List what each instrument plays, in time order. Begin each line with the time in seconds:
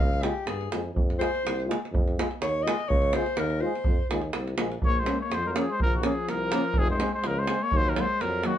Already playing: tuba C#2, alto saxophone F5
0.13 davul high
0.22 trombone G#3, euphonium F4, alto saxophone G4, davul high
0.46 tuba G2, alto saxophone G#4, davul high
0.61 davul high
0.71 tuba F2, trombone G#3, euphonium F4, davul high
0.94 tuba F2, davul low
1.10 davul high
1.19 trombone G#3, euphonium F4, alto saxophone C5, davul high
1.35 davul high
1.44 tuba C2, davul high
1.60 davul high
1.66 trombone G#3, euphonium F4
1.71 davul high
1.85 davul high
1.92 tuba F2, davul low
2.08 davul high
2.17 trombone G#3, euphonium F4, davul high
2.31 davul high
2.41 tuba D#2, alto saxophone C#5, davul high
2.63 trombone G#3, euphonium F4, alto saxophone D#5
2.68 davul high
2.80 davul high
2.89 tuba C#2, alto saxophone C#5, davul low
3.02 davul high
3.13 trombone G#3, euphonium F4, alto saxophone C5, davul high
3.26 davul high
3.37 tuba D#2, alto saxophone A#4, davul high
3.50 davul high
3.61 trombone G#3, euphonium F4, alto saxophone C5
3.75 davul high
3.84 tuba F2, davul low
4.09 tuba D#2, trombone G#3, euphonium F4, davul high
4.22 davul high
4.33 tuba C2, davul high
4.48 davul high
4.56 tuba A#1, trombone G#3, euphonium F4, davul high
4.72 davul high
4.81 tuba A#1, trumpet C#5, davul low
4.86 alto saxophone A#3
4.99 alto saxophone G#3, trumpet C5
5.05 trombone A#3, euphonium C#4, davul high
5.21 alto saxophone A#3, trumpet C#5
5.30 tuba F2, trumpet C5, davul high
5.37 alto saxophone F3
5.46 alto saxophone F#3 G#3, trumpet A#4 C5
5.53 trombone A#3, euphonium C#4, trumpet A#4, davul high
5.57 alto saxophone F3, trumpet G#4
5.71 alto saxophone G#3, trumpet C5
5.79 tuba A#1, trumpet A#4, davul low
5.84 alto saxophone F3
5.95 alto saxophone D#3, trumpet F#4
6.01 trombone A#3, euphonium C#4, davul high
6.06 alto saxophone F3, trumpet G#4
6.28 tuba C2, trumpet A#4, davul high
6.32 alto saxophone F3
6.51 trombone A#3, euphonium C#4, davul high
6.74 tuba F1, davul low
6.78 alto saxophone F3, trumpet G#4
6.91 alto saxophone G#3, trumpet C5
6.99 trombone G#3, euphonium C4, davul high
7.14 alto saxophone G#3, trumpet C5
7.23 tuba C#2, alto saxophone F3, trumpet A#4, davul high
7.38 alto saxophone G#3, trumpet C5
7.47 trombone G#3, euphonium C4, davul high
7.63 alto saxophone A#3, trumpet C#5
7.72 tuba D#2, davul low
7.76 alto saxophone F#3, trumpet C5
7.87 alto saxophone F#3, trumpet A#4, davul high
7.94 trombone F#3, euphonium A#3, davul high
8.00 alto saxophone G#3, trumpet C5
8.21 tuba F2, alto saxophone F#3, trumpet A#4, davul high
8.33 davul high
8.43 alto saxophone D#3, trombone F#3, euphonium A#3, trumpet F#4, davul high